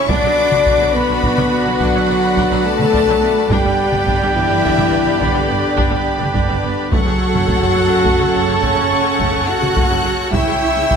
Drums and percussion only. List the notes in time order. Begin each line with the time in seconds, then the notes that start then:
0.09 taiko
0.52 taiko mid
0.66 taiko
1.23 taiko
1.38 taiko mid
1.80 taiko
2.37 taiko
2.79 taiko mid
2.94 taiko
3.50 taiko
3.93 taiko mid
4.07 taiko
4.64 taiko
4.78 taiko mid
5.21 taiko
5.78 taiko
6.21 taiko mid
6.35 taiko
6.92 taiko
7.35 taiko mid
7.48 taiko
8.05 taiko
8.20 taiko mid
8.63 taiko
9.20 taiko
9.63 taiko mid
9.77 taiko
10.33 taiko
10.91 taiko